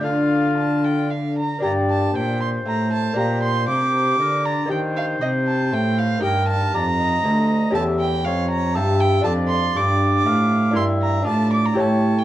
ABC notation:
X:1
M:3/4
L:1/16
Q:1/4=118
K:Dm
V:1 name="Violin"
f4 a2 g2 f2 b2 | [K:Eblyd] b2 a2 g2 c'2 b2 a2 | b2 c'2 d'6 b2 | g2 f2 e2 a2 g2 f2 |
g2 a2 b8 | [K:Dm] a2 g2 f2 b2 a2 g2 | a2 c'2 d'8 | c'2 b2 a2 d' b a3 g |]
V:2 name="Oboe"
F8 z4 | [K:Eblyd] d4 c8- | c8 B2 d2 | c12 |
B4 d2 e6 | [K:Dm] e2 z2 ^c4 e4 | d8 f4 | e4 d4 ^c4 |]
V:3 name="Lute"
[DF]12 | [K:Eblyd] [B,DG]12 | [B,DG]12 | [B,EG]12 |
[B,EG]12 | [K:Dm] [^CGA]12 | [DFA]12 | [DEB]4 [DFd]4 [EG^c]4 |]
V:4 name="Lute" clef=bass
D,8- D,2 z2 | [K:Eblyd] G,,4 B,,4 A,,4 | B,,4 C,4 D,4 | E,4 C,4 A,,4 |
G,,4 F,,4 D,,4 | [K:Dm] E,,4 F,,4 G,,4 | F,,4 G,,4 A,,4 | G,,4 A,,4 A,,4 |]
V:5 name="Cello" clef=bass
D,8- D,2 z2 | [K:Eblyd] G,,4 B,,4 A,,4 | B,,4 C,4 D,4 | E,4 C,4 A,,4 |
G,,4 F,,4 D,,4 | [K:Dm] E,,4 F,,4 G,,4 | F,,4 G,,4 A,,4 | G,,4 A,,4 A,,4 |]